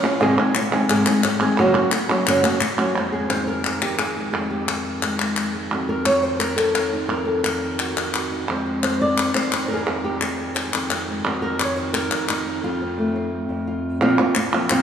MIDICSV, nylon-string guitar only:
0, 0, Header, 1, 3, 480
1, 0, Start_track
1, 0, Tempo, 345026
1, 285, Time_signature, 4, 2, 24, 8
1, 20618, End_track
2, 0, Start_track
2, 0, Title_t, "Nylon-string guitar"
2, 0, Program_c, 0, 24
2, 45, Note_on_c, 0, 65, 58
2, 56, Note_on_c, 0, 61, 53
2, 69, Note_on_c, 0, 58, 44
2, 275, Note_off_c, 0, 65, 0
2, 281, Note_off_c, 0, 61, 0
2, 281, Note_on_c, 0, 44, 86
2, 287, Note_off_c, 0, 58, 0
2, 287, Note_on_c, 0, 48, 85
2, 294, Note_on_c, 0, 51, 88
2, 298, Note_on_c, 0, 56, 94
2, 301, Note_on_c, 0, 60, 93
2, 302, Note_on_c, 0, 68, 100
2, 512, Note_off_c, 0, 44, 0
2, 513, Note_off_c, 0, 68, 0
2, 515, Note_off_c, 0, 48, 0
2, 519, Note_off_c, 0, 51, 0
2, 521, Note_off_c, 0, 56, 0
2, 522, Note_off_c, 0, 60, 0
2, 529, Note_on_c, 0, 68, 60
2, 537, Note_on_c, 0, 60, 52
2, 545, Note_on_c, 0, 56, 52
2, 554, Note_on_c, 0, 51, 45
2, 756, Note_off_c, 0, 68, 0
2, 759, Note_off_c, 0, 51, 0
2, 760, Note_off_c, 0, 60, 0
2, 764, Note_off_c, 0, 56, 0
2, 1003, Note_on_c, 0, 68, 62
2, 1012, Note_on_c, 0, 60, 56
2, 1018, Note_on_c, 0, 56, 58
2, 1025, Note_on_c, 0, 51, 50
2, 1231, Note_off_c, 0, 51, 0
2, 1232, Note_off_c, 0, 68, 0
2, 1235, Note_off_c, 0, 56, 0
2, 1236, Note_off_c, 0, 60, 0
2, 1237, Note_on_c, 0, 44, 76
2, 1242, Note_on_c, 0, 48, 84
2, 1248, Note_on_c, 0, 51, 80
2, 1252, Note_on_c, 0, 56, 83
2, 1256, Note_on_c, 0, 60, 86
2, 1259, Note_on_c, 0, 68, 82
2, 1467, Note_off_c, 0, 68, 0
2, 1468, Note_off_c, 0, 44, 0
2, 1470, Note_off_c, 0, 48, 0
2, 1473, Note_off_c, 0, 60, 0
2, 1474, Note_off_c, 0, 51, 0
2, 1475, Note_off_c, 0, 56, 0
2, 1484, Note_on_c, 0, 68, 60
2, 1490, Note_on_c, 0, 60, 55
2, 1498, Note_on_c, 0, 56, 54
2, 1502, Note_on_c, 0, 51, 50
2, 1711, Note_off_c, 0, 68, 0
2, 1714, Note_off_c, 0, 60, 0
2, 1718, Note_off_c, 0, 56, 0
2, 1720, Note_off_c, 0, 51, 0
2, 1960, Note_on_c, 0, 68, 63
2, 1965, Note_on_c, 0, 60, 55
2, 1973, Note_on_c, 0, 56, 54
2, 1977, Note_on_c, 0, 51, 51
2, 2188, Note_off_c, 0, 68, 0
2, 2190, Note_off_c, 0, 60, 0
2, 2194, Note_off_c, 0, 56, 0
2, 2197, Note_off_c, 0, 51, 0
2, 2200, Note_on_c, 0, 42, 80
2, 2207, Note_on_c, 0, 49, 81
2, 2208, Note_on_c, 0, 54, 85
2, 2215, Note_on_c, 0, 58, 89
2, 2219, Note_on_c, 0, 61, 91
2, 2220, Note_on_c, 0, 66, 90
2, 2410, Note_off_c, 0, 66, 0
2, 2418, Note_off_c, 0, 61, 0
2, 2425, Note_off_c, 0, 58, 0
2, 2427, Note_on_c, 0, 66, 59
2, 2428, Note_off_c, 0, 42, 0
2, 2431, Note_off_c, 0, 49, 0
2, 2432, Note_off_c, 0, 54, 0
2, 2434, Note_on_c, 0, 61, 55
2, 2442, Note_on_c, 0, 58, 50
2, 2449, Note_on_c, 0, 54, 48
2, 2658, Note_off_c, 0, 58, 0
2, 2660, Note_off_c, 0, 54, 0
2, 2660, Note_off_c, 0, 66, 0
2, 2664, Note_off_c, 0, 61, 0
2, 2912, Note_on_c, 0, 66, 63
2, 2916, Note_on_c, 0, 61, 53
2, 2925, Note_on_c, 0, 58, 50
2, 2933, Note_on_c, 0, 54, 53
2, 3142, Note_off_c, 0, 66, 0
2, 3144, Note_off_c, 0, 61, 0
2, 3149, Note_off_c, 0, 54, 0
2, 3149, Note_off_c, 0, 58, 0
2, 3156, Note_on_c, 0, 42, 78
2, 3161, Note_on_c, 0, 49, 75
2, 3165, Note_on_c, 0, 54, 77
2, 3165, Note_on_c, 0, 58, 86
2, 3175, Note_on_c, 0, 61, 84
2, 3178, Note_on_c, 0, 66, 80
2, 3365, Note_off_c, 0, 66, 0
2, 3378, Note_off_c, 0, 58, 0
2, 3378, Note_off_c, 0, 61, 0
2, 3382, Note_on_c, 0, 66, 60
2, 3384, Note_off_c, 0, 42, 0
2, 3386, Note_off_c, 0, 49, 0
2, 3388, Note_off_c, 0, 54, 0
2, 3395, Note_on_c, 0, 58, 51
2, 3395, Note_on_c, 0, 61, 49
2, 3406, Note_on_c, 0, 54, 43
2, 3614, Note_off_c, 0, 58, 0
2, 3615, Note_off_c, 0, 54, 0
2, 3616, Note_off_c, 0, 61, 0
2, 3616, Note_off_c, 0, 66, 0
2, 3870, Note_on_c, 0, 66, 58
2, 3876, Note_on_c, 0, 61, 57
2, 3884, Note_on_c, 0, 58, 49
2, 3890, Note_on_c, 0, 54, 46
2, 4100, Note_off_c, 0, 66, 0
2, 4103, Note_off_c, 0, 61, 0
2, 4107, Note_off_c, 0, 58, 0
2, 4110, Note_off_c, 0, 54, 0
2, 4114, Note_on_c, 0, 41, 62
2, 4124, Note_on_c, 0, 51, 43
2, 4132, Note_on_c, 0, 56, 43
2, 4143, Note_on_c, 0, 60, 41
2, 4154, Note_on_c, 0, 72, 44
2, 4340, Note_off_c, 0, 60, 0
2, 4346, Note_on_c, 0, 68, 76
2, 4581, Note_off_c, 0, 51, 0
2, 4582, Note_off_c, 0, 72, 0
2, 4588, Note_on_c, 0, 72, 88
2, 4597, Note_on_c, 0, 51, 57
2, 4824, Note_off_c, 0, 72, 0
2, 4829, Note_on_c, 0, 70, 81
2, 5067, Note_off_c, 0, 68, 0
2, 5085, Note_on_c, 0, 68, 80
2, 5292, Note_off_c, 0, 41, 0
2, 5309, Note_on_c, 0, 41, 57
2, 5315, Note_off_c, 0, 68, 0
2, 5321, Note_on_c, 0, 67, 78
2, 5546, Note_off_c, 0, 67, 0
2, 5549, Note_off_c, 0, 70, 0
2, 5552, Note_on_c, 0, 68, 83
2, 5783, Note_off_c, 0, 56, 0
2, 5800, Note_on_c, 0, 56, 41
2, 6004, Note_off_c, 0, 68, 0
2, 6010, Note_off_c, 0, 41, 0
2, 6020, Note_on_c, 0, 68, 73
2, 6027, Note_on_c, 0, 41, 66
2, 6260, Note_off_c, 0, 68, 0
2, 6266, Note_on_c, 0, 67, 72
2, 6485, Note_off_c, 0, 51, 0
2, 6501, Note_on_c, 0, 51, 54
2, 6507, Note_off_c, 0, 67, 0
2, 6513, Note_on_c, 0, 68, 69
2, 6982, Note_off_c, 0, 56, 0
2, 6999, Note_on_c, 0, 56, 49
2, 7214, Note_off_c, 0, 41, 0
2, 7231, Note_on_c, 0, 41, 58
2, 7708, Note_off_c, 0, 56, 0
2, 7714, Note_off_c, 0, 68, 0
2, 7724, Note_on_c, 0, 56, 41
2, 7936, Note_off_c, 0, 41, 0
2, 7953, Note_on_c, 0, 41, 67
2, 7959, Note_off_c, 0, 56, 0
2, 7962, Note_on_c, 0, 66, 46
2, 8194, Note_on_c, 0, 70, 84
2, 8414, Note_off_c, 0, 51, 0
2, 8428, Note_off_c, 0, 70, 0
2, 8429, Note_on_c, 0, 51, 60
2, 8434, Note_on_c, 0, 73, 93
2, 8657, Note_off_c, 0, 73, 0
2, 8657, Note_on_c, 0, 72, 87
2, 8891, Note_off_c, 0, 72, 0
2, 8897, Note_on_c, 0, 70, 87
2, 9124, Note_off_c, 0, 66, 0
2, 9128, Note_off_c, 0, 41, 0
2, 9129, Note_on_c, 0, 69, 80
2, 9144, Note_on_c, 0, 41, 58
2, 9358, Note_off_c, 0, 70, 0
2, 9374, Note_on_c, 0, 70, 86
2, 9644, Note_on_c, 0, 63, 43
2, 9840, Note_off_c, 0, 70, 0
2, 9852, Note_off_c, 0, 41, 0
2, 9857, Note_on_c, 0, 70, 77
2, 9865, Note_off_c, 0, 69, 0
2, 9868, Note_on_c, 0, 41, 67
2, 9910, Note_off_c, 0, 63, 0
2, 10089, Note_on_c, 0, 69, 72
2, 10329, Note_off_c, 0, 70, 0
2, 10337, Note_off_c, 0, 51, 0
2, 10345, Note_on_c, 0, 70, 67
2, 10354, Note_on_c, 0, 51, 58
2, 10827, Note_off_c, 0, 69, 0
2, 10851, Note_on_c, 0, 66, 48
2, 11060, Note_off_c, 0, 41, 0
2, 11076, Note_on_c, 0, 41, 60
2, 11314, Note_off_c, 0, 66, 0
2, 11330, Note_on_c, 0, 66, 43
2, 11557, Note_off_c, 0, 70, 0
2, 11569, Note_on_c, 0, 63, 43
2, 11780, Note_off_c, 0, 66, 0
2, 11784, Note_off_c, 0, 41, 0
2, 11795, Note_off_c, 0, 51, 0
2, 11800, Note_on_c, 0, 41, 67
2, 11812, Note_on_c, 0, 51, 43
2, 11815, Note_off_c, 0, 63, 0
2, 11820, Note_on_c, 0, 56, 47
2, 11833, Note_on_c, 0, 60, 46
2, 11842, Note_on_c, 0, 72, 45
2, 12040, Note_off_c, 0, 56, 0
2, 12046, Note_on_c, 0, 56, 43
2, 12266, Note_off_c, 0, 51, 0
2, 12281, Note_on_c, 0, 51, 59
2, 12282, Note_off_c, 0, 72, 0
2, 12288, Note_on_c, 0, 72, 86
2, 12526, Note_off_c, 0, 72, 0
2, 12542, Note_on_c, 0, 74, 93
2, 12984, Note_off_c, 0, 41, 0
2, 12999, Note_on_c, 0, 41, 58
2, 13000, Note_off_c, 0, 74, 0
2, 13005, Note_on_c, 0, 72, 93
2, 13239, Note_off_c, 0, 60, 0
2, 13255, Note_on_c, 0, 60, 45
2, 13467, Note_off_c, 0, 72, 0
2, 13473, Note_on_c, 0, 70, 83
2, 13537, Note_off_c, 0, 60, 0
2, 13543, Note_on_c, 0, 68, 73
2, 13577, Note_off_c, 0, 70, 0
2, 13594, Note_on_c, 0, 70, 82
2, 13703, Note_off_c, 0, 68, 0
2, 13713, Note_off_c, 0, 41, 0
2, 13719, Note_on_c, 0, 68, 77
2, 13730, Note_on_c, 0, 41, 68
2, 13966, Note_off_c, 0, 68, 0
2, 13972, Note_on_c, 0, 67, 75
2, 14192, Note_off_c, 0, 51, 0
2, 14196, Note_off_c, 0, 67, 0
2, 14202, Note_on_c, 0, 68, 81
2, 14204, Note_off_c, 0, 70, 0
2, 14209, Note_on_c, 0, 51, 59
2, 14425, Note_on_c, 0, 70, 83
2, 14671, Note_off_c, 0, 70, 0
2, 14671, Note_on_c, 0, 72, 83
2, 14912, Note_off_c, 0, 41, 0
2, 14929, Note_off_c, 0, 68, 0
2, 14929, Note_on_c, 0, 41, 63
2, 15174, Note_on_c, 0, 60, 49
2, 15404, Note_off_c, 0, 56, 0
2, 15421, Note_on_c, 0, 56, 49
2, 15636, Note_off_c, 0, 41, 0
2, 15643, Note_off_c, 0, 51, 0
2, 15644, Note_off_c, 0, 72, 0
2, 15652, Note_on_c, 0, 41, 71
2, 15655, Note_off_c, 0, 60, 0
2, 15658, Note_off_c, 0, 56, 0
2, 15660, Note_on_c, 0, 51, 49
2, 15670, Note_on_c, 0, 63, 48
2, 15680, Note_on_c, 0, 66, 49
2, 15691, Note_on_c, 0, 70, 49
2, 15874, Note_off_c, 0, 70, 0
2, 15890, Note_on_c, 0, 70, 93
2, 16118, Note_off_c, 0, 51, 0
2, 16134, Note_on_c, 0, 51, 60
2, 16139, Note_off_c, 0, 70, 0
2, 16139, Note_on_c, 0, 73, 98
2, 16361, Note_off_c, 0, 73, 0
2, 16361, Note_on_c, 0, 72, 89
2, 16598, Note_off_c, 0, 72, 0
2, 16604, Note_on_c, 0, 70, 98
2, 16835, Note_off_c, 0, 41, 0
2, 16852, Note_on_c, 0, 41, 64
2, 17083, Note_off_c, 0, 63, 0
2, 17100, Note_on_c, 0, 63, 88
2, 17561, Note_off_c, 0, 41, 0
2, 17561, Note_off_c, 0, 66, 0
2, 17571, Note_off_c, 0, 70, 0
2, 17577, Note_off_c, 0, 51, 0
2, 17578, Note_on_c, 0, 41, 75
2, 17579, Note_off_c, 0, 63, 0
2, 17586, Note_on_c, 0, 65, 75
2, 17829, Note_on_c, 0, 60, 44
2, 18054, Note_on_c, 0, 57, 60
2, 18288, Note_off_c, 0, 60, 0
2, 18305, Note_on_c, 0, 60, 46
2, 18751, Note_off_c, 0, 41, 0
2, 18768, Note_on_c, 0, 41, 61
2, 19006, Note_off_c, 0, 65, 0
2, 19023, Note_on_c, 0, 65, 50
2, 19465, Note_off_c, 0, 57, 0
2, 19471, Note_off_c, 0, 41, 0
2, 19485, Note_off_c, 0, 60, 0
2, 19487, Note_on_c, 0, 41, 82
2, 19492, Note_off_c, 0, 65, 0
2, 19492, Note_on_c, 0, 46, 86
2, 19497, Note_on_c, 0, 53, 84
2, 19499, Note_on_c, 0, 58, 85
2, 19502, Note_on_c, 0, 60, 89
2, 19509, Note_on_c, 0, 65, 101
2, 19721, Note_off_c, 0, 41, 0
2, 19723, Note_off_c, 0, 46, 0
2, 19726, Note_off_c, 0, 53, 0
2, 19727, Note_off_c, 0, 58, 0
2, 19727, Note_off_c, 0, 65, 0
2, 19728, Note_off_c, 0, 60, 0
2, 19743, Note_on_c, 0, 65, 65
2, 19752, Note_on_c, 0, 60, 58
2, 19756, Note_on_c, 0, 58, 52
2, 19763, Note_on_c, 0, 53, 50
2, 19969, Note_off_c, 0, 53, 0
2, 19969, Note_off_c, 0, 65, 0
2, 19970, Note_off_c, 0, 58, 0
2, 19970, Note_off_c, 0, 60, 0
2, 20222, Note_on_c, 0, 65, 64
2, 20230, Note_on_c, 0, 60, 62
2, 20234, Note_on_c, 0, 58, 57
2, 20240, Note_on_c, 0, 53, 51
2, 20447, Note_off_c, 0, 65, 0
2, 20449, Note_off_c, 0, 53, 0
2, 20451, Note_off_c, 0, 60, 0
2, 20453, Note_off_c, 0, 58, 0
2, 20458, Note_on_c, 0, 41, 84
2, 20461, Note_on_c, 0, 46, 88
2, 20466, Note_on_c, 0, 53, 90
2, 20470, Note_on_c, 0, 58, 87
2, 20472, Note_on_c, 0, 60, 99
2, 20474, Note_on_c, 0, 65, 96
2, 20618, Note_off_c, 0, 41, 0
2, 20618, Note_off_c, 0, 46, 0
2, 20618, Note_off_c, 0, 53, 0
2, 20618, Note_off_c, 0, 58, 0
2, 20618, Note_off_c, 0, 60, 0
2, 20618, Note_off_c, 0, 65, 0
2, 20618, End_track
3, 0, Start_track
3, 0, Title_t, "Muted nylon-string guitar strokes"
3, 772, Note_on_c, 9, 29, 68
3, 911, Note_off_c, 9, 29, 0
3, 1729, Note_on_c, 9, 29, 71
3, 1868, Note_off_c, 9, 29, 0
3, 2671, Note_on_c, 9, 29, 61
3, 2810, Note_off_c, 9, 29, 0
3, 3627, Note_on_c, 9, 29, 72
3, 3767, Note_off_c, 9, 29, 0
3, 19979, Note_on_c, 9, 29, 67
3, 20119, Note_off_c, 9, 29, 0
3, 20618, End_track
0, 0, End_of_file